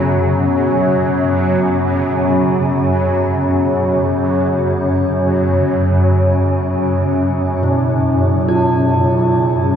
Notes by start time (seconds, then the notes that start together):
Already playing: F#2 C#3 F#3 B3 C#4
7.63 B2
8.49 F4